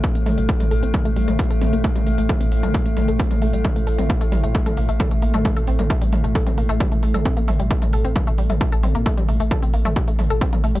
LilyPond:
<<
  \new Staff \with { instrumentName = "Synth arpeggio sound" } { \time 4/4 \key a \minor \tempo 4 = 133 c'16 bes16 a16 g16 a16 a16 a'16 c'16 bes16 a16 g16 a16 a16 a'16 c'16 bes16 | a16 g16 a16 a16 a'16 c'16 bes16 a16 g16 a16 a16 a'16 c'16 bes16 a16 g16 | a16 a16 a'16 c'16 bes16 a16 g16 a16 a16 a'16 bes16 a16 a'16 a16 bes16 a16 | a16 a'16 c'16 bes16 a16 g16 a16 a16 a'16 c'16 bes16 a16 g16 a16 a16 a'16 |
c'16 bes16 a16 g16 a16 a16 a'16 c'16 bes16 a16 g16 a16 a16 a'16 c'16 bes16 | a16 g16 a16 a16 a'16 c'16 bes16 a16 g16 a16 a16 a'16 c'16 bes16 a16 g16 | }
  \new Staff \with { instrumentName = "Synth drone" } { \clef bass \time 4/4 \key a \minor <a, a>1~ | <a, a>1~ | <a, a>1~ | <a, a>1~ |
<a, a>1~ | <a, a>1 | }
  \new Staff \with { instrumentName = "Sub bass" } { \clef bass \time 4/4 \key a \minor r16 a,,16 a,,16 a,,16 r16 a,,16 a,,16 a,,16 r16 a,,16 a,,16 a,,16 r16 a,,16 a,,16 a,,16 | r16 a,,16 a,,16 a,,16 r16 a,,16 a,,16 a,,16 r16 a,,16 a,,16 a,,16 r16 a,,16 a,,16 a,,16 | r16 a,,16 a,,16 a,,16 r16 a,,16 a,,16 a,,16 r16 a,,16 a,,16 a,,16 r16 a,,16 a,,16 a,,16 | r16 a,,16 a,,16 a,,16 r16 a,,16 a,,16 a,,16 r16 a,,16 a,,16 a,,16 r16 a,,16 a,,16 a,,16 |
r16 a,,16 a,,16 a,,16 r16 a,,16 a,,16 a,,16 r16 a,,16 a,,16 a,,16 r16 a,,16 a,,16 a,,16 | r16 a,,16 a,,16 a,,16 r16 a,,16 a,,16 a,,16 r16 a,,16 a,,16 a,,16 r16 a,,16 a,,16 a,,16 | }
  \new DrumStaff \with { instrumentName = "Drums" } \drummode { \time 4/4 <hh bd>16 hh16 <hho toml>16 hh16 <hh bd>16 <hh toml>16 hho16 hh16 <hh bd toml>16 hh16 hho16 <hh toml>16 <hh bd>16 hh16 <hho toml>16 hh16 | <hh bd>16 <hh toml>16 hho16 hh16 <hh bd toml>16 hh16 hho16 <hh toml>16 <hh bd>16 hh16 <hho toml>16 hh16 <hh bd>16 <hh toml>16 hho16 hh16 | <hh bd toml>16 hh16 hho16 <hh toml>16 <hh bd>16 hh16 <hho toml>16 hh16 <hh bd>16 <hh toml>16 hho16 hh16 <hh bd toml>16 hh16 hho16 <hh toml>16 | <hh bd toml>16 hh16 hho16 <hh toml>16 <hh bd>16 hh16 <hho toml>16 hh16 <hh bd>16 <hh toml>16 hho16 hh16 <hh bd toml>16 hh16 hho16 <hh toml>16 |
<hh bd>16 hh16 <hho toml>16 hh16 <hh bd>16 <hh toml>16 hho16 hh16 <hh bd toml>16 hh16 hho16 <hh toml>16 <hh bd>16 hh16 <hho toml>16 hh16 | <hh bd>16 <hh toml>16 hho16 hh16 <hh bd toml>16 hh16 hho16 <hh toml>16 <hh bd>16 hh16 <hho toml>16 hh16 <hh bd>16 <hh toml>16 hho16 hh16 | }
>>